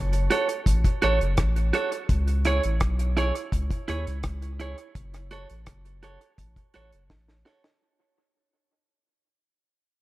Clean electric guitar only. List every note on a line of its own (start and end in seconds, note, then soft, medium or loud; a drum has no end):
0.30 0.46 F#4 medium
0.30 0.47 A4 medium
0.30 0.47 C#5 medium
1.02 1.18 F#4 medium
1.02 1.18 A4 loud
1.02 1.19 C#5 loud
1.73 1.89 F#4 medium
1.73 1.90 A4 medium
1.73 1.90 C#5 medium
1.92 muted clean electric guitar stroke soft
2.45 2.61 E4 medium
2.45 2.62 G#4 medium
2.45 2.62 C#5 loud
3.17 3.32 E4 medium
3.17 3.33 G#4 medium
3.17 3.33 C#5 medium
3.88 4.04 E4 medium
3.88 4.04 G#4 medium
3.88 4.05 C#5 medium
4.60 4.75 E4 medium
4.60 4.76 G#4 medium
4.60 4.76 C#5 medium
5.31 5.47 F#4 medium
5.31 5.47 A4 medium
5.31 5.48 C#5 loud
6.03 6.18 F#4 medium
6.03 6.19 A4 medium
6.03 6.19 C#5 medium
6.74 6.90 F#4 medium
6.74 6.90 A4 medium
6.74 6.91 C#5 loud
7.45 7.61 F#4 medium
7.45 7.62 A4 medium
7.45 7.62 C#5 medium
7.64 muted clean electric guitar stroke medium